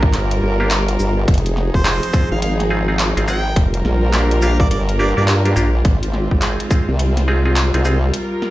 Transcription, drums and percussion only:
0.03 kick
0.13 clap, closed hi-hat
0.31 closed hi-hat
0.71 clap, closed hi-hat
0.88 closed hi-hat
1.00 shaker
1.28 kick, closed hi-hat
1.34 closed hi-hat
1.38 closed hi-hat
1.46 closed hi-hat
1.57 snare
1.74 kick
1.85 clap, closed hi-hat
2.03 closed hi-hat
2.14 kick, shaker
2.42 closed hi-hat
2.60 snare, closed hi-hat
2.99 clap, closed hi-hat
3.17 closed hi-hat
3.28 shaker
3.56 kick, closed hi-hat
3.74 closed hi-hat
3.85 snare
4.13 clap, closed hi-hat
4.31 closed hi-hat
4.42 shaker
4.60 kick
4.71 closed hi-hat
4.89 closed hi-hat
5.28 clap, closed hi-hat
5.45 closed hi-hat
5.57 shaker
5.85 kick, closed hi-hat
6.03 closed hi-hat
6.13 snare
6.31 kick
6.42 clap, closed hi-hat
6.60 closed hi-hat
6.71 kick, shaker
6.99 closed hi-hat
7.17 snare, closed hi-hat
7.56 clap, closed hi-hat
7.74 closed hi-hat
7.85 shaker
8.14 closed hi-hat
8.42 snare

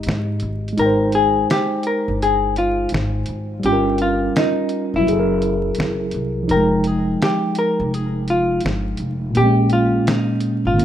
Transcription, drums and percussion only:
0.03 closed hi-hat
0.08 finger snap, snare
0.40 closed hi-hat
0.68 closed hi-hat
0.78 closed hi-hat
1.12 closed hi-hat
1.50 finger snap, snare, closed hi-hat
1.83 closed hi-hat
2.22 closed hi-hat
2.56 closed hi-hat
2.89 closed hi-hat
2.94 finger snap, snare
3.26 closed hi-hat
3.63 closed hi-hat
3.98 closed hi-hat
4.36 finger snap, snare, closed hi-hat
4.69 closed hi-hat
5.08 closed hi-hat
5.42 closed hi-hat
5.75 closed hi-hat
5.80 finger snap, snare
6.11 closed hi-hat
6.49 closed hi-hat
6.84 closed hi-hat
7.22 finger snap, snare, closed hi-hat
7.55 closed hi-hat
7.94 closed hi-hat
8.28 closed hi-hat
8.60 closed hi-hat
8.66 finger snap, snare
8.97 closed hi-hat
9.35 closed hi-hat
9.70 closed hi-hat
10.07 finger snap, snare, closed hi-hat
10.40 closed hi-hat
10.79 closed hi-hat

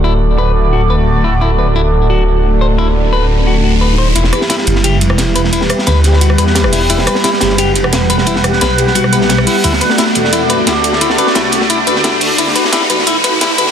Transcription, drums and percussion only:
4.16 closed hi-hat, ride
4.24 snare
4.33 cross-stick, closed hi-hat, ride
4.41 snare
4.50 snare, closed hi-hat, ride
4.58 snare
4.67 closed hi-hat, ride
4.75 snare
4.84 closed hi-hat, ride
5.01 closed hi-hat, ride
5.10 cross-stick
5.18 snare, closed hi-hat, ride
5.36 closed hi-hat, ride
5.44 snare
5.53 closed hi-hat, ride
5.61 snare
5.69 cross-stick, closed hi-hat, ride
5.79 snare
5.87 snare, closed hi-hat, ride
6.04 snare, closed hi-hat, ride
6.13 snare
6.21 closed hi-hat, ride
6.30 cross-stick
6.38 closed hi-hat, ride
6.47 snare
6.55 snare, closed hi-hat, ride
6.64 cross-stick
6.73 closed hi-hat, open hi-hat
6.89 closed hi-hat, ride
6.98 snare
7.07 cross-stick, closed hi-hat, ride
7.15 snare
7.24 snare, closed hi-hat, ride
7.33 snare
7.41 snare, closed hi-hat, ride
7.50 snare
7.58 closed hi-hat, ride
7.76 closed hi-hat, ride
7.84 cross-stick
7.93 snare, closed hi-hat, ride
8.10 closed hi-hat, ride
8.18 snare
8.26 closed hi-hat, ride
8.36 snare
8.44 cross-stick, closed hi-hat, ride
8.53 snare
8.61 snare, closed hi-hat, ride
8.78 closed hi-hat, ride
8.87 snare
8.95 closed hi-hat, ride
9.04 cross-stick
9.13 closed hi-hat, ride
9.21 snare
9.29 snare, closed hi-hat, ride
9.38 cross-stick
9.47 closed hi-hat, open hi-hat
9.64 closed hi-hat, ride
9.73 snare
9.81 closed hi-hat, ride
9.90 snare
9.98 snare, closed hi-hat, ride
10.06 snare
10.15 closed hi-hat, ride
10.24 snare
10.33 closed hi-hat, ride
10.49 closed hi-hat, ride
10.67 snare, closed hi-hat, ride
10.84 closed hi-hat, ride
10.93 snare
11.01 closed hi-hat, ride
11.10 snare
11.18 closed hi-hat, ride
11.27 snare
11.35 snare, closed hi-hat, ride
11.52 snare, closed hi-hat, ride
11.61 snare
11.70 closed hi-hat, ride
11.87 closed hi-hat, ride
11.96 snare
12.04 snare, closed hi-hat, ride
12.21 closed hi-hat, open hi-hat
12.38 closed hi-hat, ride
12.47 snare
12.56 closed hi-hat, ride
12.64 snare
12.73 snare, closed hi-hat, ride
12.81 snare
12.90 closed hi-hat, ride
12.99 snare
13.07 closed hi-hat, ride
13.24 closed hi-hat, ride
13.41 snare, closed hi-hat, ride
13.58 closed hi-hat, ride
13.67 snare

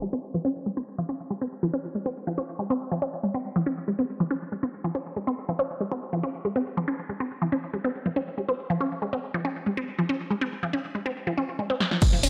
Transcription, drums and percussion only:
11.80 snare
11.91 snare
12.02 kick, closed hi-hat, crash, tambourine
12.13 tambourine
12.23 open hi-hat, ride, tambourine

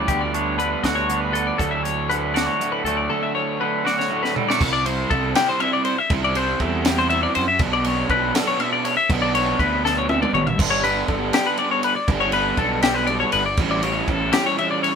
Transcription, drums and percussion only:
0.08 kick, closed hi-hat
0.34 closed hi-hat
0.60 closed hi-hat
0.84 kick, snare, closed hi-hat
1.10 closed hi-hat
1.35 closed hi-hat
1.59 kick, closed hi-hat
1.85 closed hi-hat
2.11 closed hi-hat
2.36 snare, closed hi-hat
2.61 closed hi-hat
2.86 closed hi-hat
3.87 snare
4.00 snare
4.25 snare
4.36 floor tom
4.50 snare
4.61 kick, crash
4.86 ride
5.11 kick, ride
5.35 snare, ride
5.60 ride
5.85 ride
6.10 kick, ride
6.35 ride
6.60 kick, ride
6.85 snare, ride
7.10 ride
7.35 ride
7.59 kick, ride
7.84 ride
8.09 kick, ride
8.35 snare, ride
8.60 ride
8.85 ride
9.10 kick, ride
9.35 ride
9.59 kick, ride
9.86 snare
10.09 high tom
10.23 mid tom
10.35 mid tom
10.47 floor tom
10.59 kick, crash
10.84 ride
11.08 kick, ride
11.33 snare, ride
11.57 ride
11.83 ride
12.08 kick, ride
12.32 ride
12.57 kick, ride
12.83 snare, ride
13.07 ride
13.32 ride
13.57 kick, ride
13.83 ride
14.08 kick, ride
14.33 snare, ride
14.58 ride
14.84 ride

